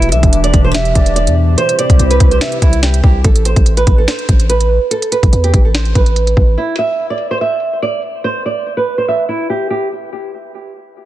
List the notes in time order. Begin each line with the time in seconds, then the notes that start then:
Already playing: E1 B2 E3 D4 G4
0.02 closed hi-hat
0.12 B1 E5, closed hi-hat
0.23 E1, kick, closed hi-hat
0.33 closed hi-hat
0.44 D5, closed hi-hat
0.54 E1, kick, closed hi-hat
0.64 C5
0.74 E5, snare, closed hi-hat
0.85 closed hi-hat
0.95 E1 D5, kick, closed hi-hat
1.06 closed hi-hat
1.16 D5, closed hi-hat
1.27 E2, closed hi-hat
1.58 C3 C4 E4 G4 C5, closed hi-hat
1.69 closed hi-hat
1.79 D5, closed hi-hat
1.90 C2, kick, closed hi-hat
1.99 C2, closed hi-hat
2.10 B4, closed hi-hat
2.20 C2, kick, closed hi-hat, open hi-hat
2.31 C5, closed hi-hat
2.41 E5, snare, closed hi-hat
2.52 closed hi-hat
2.62 C2 E4, kick, closed hi-hat
2.73 closed hi-hat
2.83 G4, snare, closed hi-hat
2.94 closed hi-hat
3.04 C2 G4, kick
3.24 A1 A4, kick, closed hi-hat
3.36 closed hi-hat
3.45 C5, closed hi-hat
3.56 A1, kick, closed hi-hat
3.66 closed hi-hat
3.77 B4, closed hi-hat
3.87 A1, kick, closed hi-hat
3.98 A4
4.08 C5, snare, closed hi-hat
4.19 closed hi-hat
4.29 A1, kick, closed hi-hat
4.40 closed hi-hat
4.49 B4, closed hi-hat
4.61 closed hi-hat
4.91 A4, closed hi-hat
5.02 closed hi-hat
5.12 B4, closed hi-hat
5.23 A1, kick, closed hi-hat
5.33 E2, closed hi-hat
5.44 G4, closed hi-hat
5.54 A1, kick, closed hi-hat
5.65 A4
5.74 C5, snare, closed hi-hat
5.85 closed hi-hat
5.95 A1 B4, kick, closed hi-hat
6.06 closed hi-hat
6.16 closed hi-hat
6.27 closed hi-hat
6.37 A1, kick
6.58 E4
6.79 E5
7.10 D5
7.31 C5
7.41 E5
7.82 D5
8.24 C5
8.46 D5
8.77 B4
8.98 C5
9.08 E5
9.29 E4
9.50 G4
9.70 G4